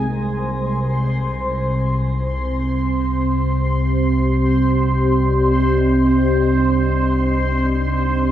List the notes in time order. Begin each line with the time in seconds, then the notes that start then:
Already playing: C2 G#3 D#4 G#4 A#4 C5 G#5
0.10 C2 C3 C4 C5 C6
1.71 G4
3.47 D5
3.73 D#5